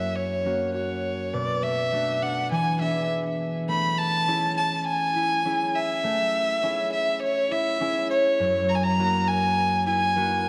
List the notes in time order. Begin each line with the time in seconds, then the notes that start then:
Already playing: F#2 A#3 C#4 E4 F#4 G#4 E5
0.16 C#5
0.45 A#3 C#4 F#4
0.75 F#4 C#5
1.33 B2 D5
1.62 A3 E5
1.92 A3 D4 F#4
2.22 D4 F#5
2.51 E3 G#5
2.80 B3 D4 G#4 E5
3.68 A3 B5
3.98 A5
4.27 C#4 E4 G#4
4.57 A5
4.87 G#5
5.16 E4
5.45 C#4 E4 G#4
5.75 E5
6.04 A3
6.63 C#4 E4 G#4
6.93 E5
7.22 C#5
7.51 E4 E5
7.80 C#4 E4 G#4
8.10 C#5
8.40 F#2
8.69 A#5
8.75 G#5
8.83 A#5
8.98 A#3 E4 F#4
9.28 G#5
9.86 E4 G#5
10.16 A#3 E4 F#4